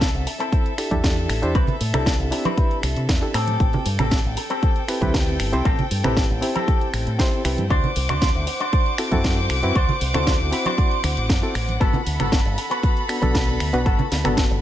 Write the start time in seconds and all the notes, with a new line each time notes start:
Already playing: A4 E5
0.01 kick, snare, closed hi-hat
0.14 C2, closed hi-hat
0.26 muted clean electric guitar stroke, open hi-hat
0.40 C4 E4 A4, closed hi-hat
0.52 kick, closed hi-hat
0.66 closed hi-hat
0.78 D4 E4 G4 A4, finger snap, open hi-hat
0.91 E2 D4 E4 G4 A4, kick, closed hi-hat, high conga
1.03 muted clean electric guitar stroke, kick, snare, closed hi-hat
1.17 muted clean electric guitar stroke, closed hi-hat
1.29 A1, finger snap, open hi-hat
1.42 E2 D4 E4 G4 C5, closed hi-hat
1.55 C2 C4 E4 B4, kick, closed hi-hat
1.67 closed hi-hat, low conga
1.81 A2, open hi-hat
1.93 C2 C4 D4 E4 G4 A4, finger snap, closed hi-hat, low conga
2.06 kick, snare, closed hi-hat
2.19 C2, closed hi-hat
2.31 C4 D4 E4 G4, muted clean electric guitar stroke, open hi-hat
2.45 C4 E4 B4, closed hi-hat, high conga
2.58 kick, closed hi-hat
2.71 closed hi-hat
2.83 C2, finger snap, open hi-hat
2.96 C3, closed hi-hat
3.09 E2, muted clean electric guitar stroke, kick, snare, closed hi-hat
3.22 D4 E4 G4 A4, muted clean electric guitar stroke, closed hi-hat
3.34 A2 C4 G4 A4 G5, finger snap, open hi-hat
3.47 closed hi-hat, high conga
3.60 A1, kick, closed hi-hat
3.73 closed hi-hat, low conga
3.86 G2, open hi-hat
3.99 A1 C4 G4 A4, finger snap, closed hi-hat, low conga
4.11 kick, snare, closed hi-hat
4.25 A1, closed hi-hat
4.37 muted clean electric guitar stroke, open hi-hat
4.50 C4 G4 A4, closed hi-hat
4.63 kick, closed hi-hat
4.76 closed hi-hat
4.88 C4 E4 G4 B4, finger snap, open hi-hat
5.01 D2 C4 E4 G4 B4, kick, closed hi-hat, high conga
5.14 muted clean electric guitar stroke, kick, snare, closed hi-hat
5.27 muted clean electric guitar stroke, closed hi-hat
5.40 G1, finger snap, open hi-hat
5.52 C2 C4 E4 G4 C5, closed hi-hat
5.65 A1 C4 G4 A4, kick, closed hi-hat
5.79 closed hi-hat, low conga
5.91 G2, open hi-hat
6.04 A1 C4 E4 G4 A4 B4, finger snap, closed hi-hat, low conga
6.17 kick, snare, closed hi-hat
6.30 A1, closed hi-hat
6.41 C4 E4 G4 C5, muted clean electric guitar stroke, open hi-hat
6.55 C4 G4 A4, closed hi-hat, high conga
6.68 kick, closed hi-hat
6.81 closed hi-hat
6.93 A1, finger snap, open hi-hat
7.07 A2, closed hi-hat
7.19 C4 E4 G4 C5, muted clean electric guitar stroke, kick, snare, closed hi-hat
7.32 muted clean electric guitar stroke, closed hi-hat
7.44 C2 C4 E4 G4 B4, finger snap, open hi-hat
7.58 G2, closed hi-hat, high conga
7.70 D2 D4 F#4 C5 F#5 D6, kick, closed hi-hat
7.84 closed hi-hat, low conga
7.96 C2, open hi-hat
8.09 D2 D4 F#4 C5, finger snap, closed hi-hat, low conga
8.22 kick, snare, closed hi-hat
8.35 D2, closed hi-hat
8.47 muted clean electric guitar stroke, open hi-hat
8.60 D4 F#4 C5, closed hi-hat
8.73 kick, closed hi-hat
8.86 closed hi-hat
8.98 C4 E4 F#4 A4, finger snap, open hi-hat
9.12 F#2 C4 E4 F#4 A4, kick, closed hi-hat, high conga
9.24 muted clean electric guitar stroke, kick, snare, closed hi-hat
9.37 muted clean electric guitar stroke, closed hi-hat
9.50 C2, finger snap, open hi-hat
9.63 F#2 C4 E4 F#4 B4, closed hi-hat
9.75 D2 D4 F#4 C5, kick, closed hi-hat
9.89 closed hi-hat, low conga
10.01 C2, open hi-hat
10.14 D2 C4 D4 E4 F#4 A4 C5, finger snap, closed hi-hat, low conga
10.27 kick, snare, closed hi-hat
10.40 D2, closed hi-hat
10.51 C4 E4 F#4 B5, muted clean electric guitar stroke, open hi-hat
10.65 D4 F#4 C5, closed hi-hat, high conga
10.78 kick, closed hi-hat
10.91 closed hi-hat
11.04 D2, finger snap, open hi-hat
11.17 A1, closed hi-hat
11.29 F#2, muted clean electric guitar stroke, kick, snare, closed hi-hat
11.42 C4 E4 F#4 A4, muted clean electric guitar stroke, closed hi-hat
11.55 A1, finger snap, open hi-hat
11.69 closed hi-hat, high conga
11.80 G1 B3 F#4 A4 B5, kick, closed hi-hat
11.93 closed hi-hat, low conga
12.06 D2, open hi-hat
12.19 G1 B3 F#4 A4, finger snap, closed hi-hat, low conga
12.32 kick, snare, closed hi-hat
12.45 G1, closed hi-hat
12.57 muted clean electric guitar stroke, open hi-hat
12.71 B3 F#4 B4, closed hi-hat
12.83 kick, closed hi-hat
12.97 closed hi-hat
13.09 B3 D4 F#4 A4, finger snap, open hi-hat
13.22 B1 B3 D4 F#4 A4, kick, closed hi-hat, high conga
13.34 muted clean electric guitar stroke, kick, snare, closed hi-hat
13.48 muted clean electric guitar stroke, closed hi-hat
13.60 D2, finger snap, open hi-hat
13.73 B1 B3 D4 F#4 B4, closed hi-hat
13.85 G1 B3 F#4 A4, kick, closed hi-hat
13.99 closed hi-hat, low conga
14.12 D2, snare, open hi-hat
14.24 G1 B3 D4 F#4 A4, finger snap, closed hi-hat, low conga
14.37 kick, snare, closed hi-hat
14.50 G1, closed hi-hat